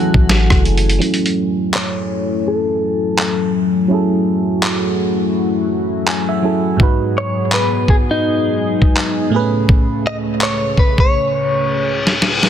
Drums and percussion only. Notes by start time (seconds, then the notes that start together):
0.14 kick
0.29 snare, closed hi-hat
0.50 kick, cross-stick
0.65 closed hi-hat
0.78 closed hi-hat
0.90 closed hi-hat
1.02 closed hi-hat
1.14 closed hi-hat
1.26 closed hi-hat
1.74 clap
3.19 clap
4.63 clap
6.08 clap
6.80 kick
7.52 clap
7.88 kick
8.82 kick
8.97 clap
9.69 kick
10.41 clap
10.77 kick
10.98 kick
12.07 snare
12.22 snare
12.43 snare